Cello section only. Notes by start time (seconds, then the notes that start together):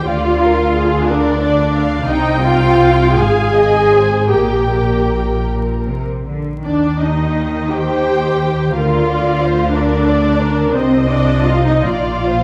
0.07 D3
2.08 C3
3.19 G#2
4.33 A#2
5.50 A#2
5.89 C3
6.28 D3
6.66 D#3
8.76 D3
10.75 C3
11.84 A#2